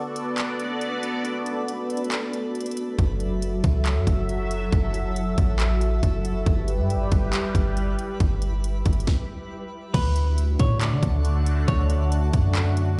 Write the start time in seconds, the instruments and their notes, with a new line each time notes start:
Already playing: synth texture A3 D4 B4, analog synth pad B3 F#4 A4 D5
0.16 closed hi-hat
0.38 clap, closed hi-hat
0.60 closed hi-hat
0.81 closed hi-hat
1.03 closed hi-hat
1.25 closed hi-hat
1.46 closed hi-hat
1.68 closed hi-hat
1.90 closed hi-hat
1.97 closed hi-hat
2.04 closed hi-hat
2.12 clap, closed hi-hat
2.33 closed hi-hat
2.55 closed hi-hat
2.61 closed hi-hat
2.66 closed hi-hat
2.71 closed hi-hat
2.77 closed hi-hat
2.98 808-style bass F#1, synth texture F#3 E4 A4, analog synth pad F#3 E5, kick, closed hi-hat
3.20 closed hi-hat
3.42 closed hi-hat
3.64 808-style bass C#2, kick, closed hi-hat
3.86 clap, closed hi-hat
3.96 808-style bass F#2
4.07 808-style bass F#1, kick, closed hi-hat
4.29 closed hi-hat
4.51 closed hi-hat
4.72 808-style bass F#1, kick, closed hi-hat
4.94 closed hi-hat
5.16 closed hi-hat
5.38 808-style bass A1, kick, closed hi-hat
5.60 clap, closed hi-hat
5.81 closed hi-hat
6.03 808-style bass F#1, kick, closed hi-hat
6.25 closed hi-hat
6.46 808-style bass G1, analog synth pad G3 G4 B4, synth texture G3 B4, kick, closed hi-hat
6.68 closed hi-hat
6.79 808-style bass G2
6.90 closed hi-hat
6.95 808-style bass G1
7.12 808-style bass G1, kick, closed hi-hat
7.33 clap, closed hi-hat
7.55 808-style bass G1, kick, closed hi-hat
7.77 closed hi-hat
7.99 closed hi-hat
8.20 808-style bass G1, kick, closed hi-hat
8.42 closed hi-hat
8.64 closed hi-hat
8.86 808-style bass G1, kick, closed hi-hat
8.93 closed hi-hat
9.00 closed hi-hat
9.07 kick, snare
9.94 808-style bass D2, analog synth pad D3 A3 D4 F#4, synth texture D4 F#4 F#5, clean electric guitar B4, kick, closed hi-hat, crash
10.16 closed hi-hat
10.38 closed hi-hat
10.59 808-style bass A2, clean electric guitar C#5, kick, closed hi-hat
10.81 clean electric guitar D5, clap, closed hi-hat
10.92 808-style bass D3
11.03 808-style bass D2, kick, closed hi-hat
11.25 closed hi-hat
11.46 closed hi-hat
11.68 808-style bass D2, clean electric guitar C#5, kick, closed hi-hat
11.90 closed hi-hat
12.12 closed hi-hat
12.33 808-style bass F#2, kick, closed hi-hat
12.55 clap, closed hi-hat
12.77 closed hi-hat